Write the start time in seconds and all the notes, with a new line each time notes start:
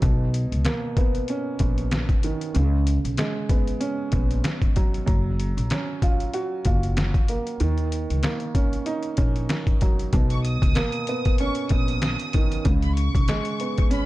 0.02 B1 B2, kick, closed hi-hat
0.34 closed hi-hat
0.52 C#2, closed hi-hat
0.64 A#3, snare, closed hi-hat
0.97 B3, kick, closed hi-hat
1.15 closed hi-hat
1.28 C#4, closed hi-hat
1.59 A#1 B3, kick, closed hi-hat
1.78 closed hi-hat
1.91 snare, closed hi-hat
2.09 kick, closed hi-hat
2.23 D#3, closed hi-hat
2.41 closed hi-hat
2.54 C#2 C#3, closed hi-hat
2.87 closed hi-hat
3.05 B1, closed hi-hat
3.17 G#3, snare, closed hi-hat
3.49 B3, kick, closed hi-hat
3.67 closed hi-hat
3.80 C#4, closed hi-hat
4.12 A#1 B3, kick, closed hi-hat
4.31 closed hi-hat
4.44 snare, closed hi-hat
4.62 kick, closed hi-hat
4.76 F#3, kick, closed hi-hat
4.94 closed hi-hat
5.06 F#1 F#3, kick, closed hi-hat
5.40 closed hi-hat
5.57 A#1, closed hi-hat
5.70 C#4, snare, closed hi-hat
6.02 F4, kick, closed hi-hat
6.20 closed hi-hat
6.34 F#4, closed hi-hat
6.65 F#1 F4, kick, closed hi-hat
6.83 closed hi-hat
6.97 snare, closed hi-hat
7.14 kick, closed hi-hat
7.28 A#3, closed hi-hat
7.47 closed hi-hat
7.60 D#2 D#3, closed hi-hat
7.78 closed hi-hat
7.92 closed hi-hat
8.10 C#2, closed hi-hat
8.23 A#3, snare, closed hi-hat
8.40 closed hi-hat
8.55 C#4, kick, closed hi-hat
8.73 closed hi-hat
8.86 D#4, closed hi-hat
9.03 closed hi-hat
9.17 A#1 C#4, kick, closed hi-hat
9.36 closed hi-hat
9.49 snare, closed hi-hat
9.67 kick, closed hi-hat
9.81 F#3, kick, closed hi-hat
9.99 closed hi-hat
10.13 B1 B2, kick, closed hi-hat
10.30 C#6, closed hi-hat
10.45 D#6, closed hi-hat
10.62 C#2, kick, closed hi-hat
10.75 A#3, snare, closed hi-hat
10.92 closed hi-hat
11.07 B3, closed hi-hat
11.25 kick, closed hi-hat
11.38 C#4 C#6, closed hi-hat
11.55 closed hi-hat
11.69 A#1 B3 D#6, kick, closed hi-hat
11.88 closed hi-hat
12.02 snare, closed hi-hat
12.19 closed hi-hat
12.33 D#3, kick, closed hi-hat
12.52 closed hi-hat
12.65 C#2 C#3, kick, closed hi-hat
12.82 B5, closed hi-hat
12.96 C#6, closed hi-hat
13.15 B1, kick, closed hi-hat
13.28 G#3, snare, closed hi-hat
13.45 closed hi-hat
13.60 B3, closed hi-hat
13.78 kick, closed hi-hat
13.91 C#4 B5, closed hi-hat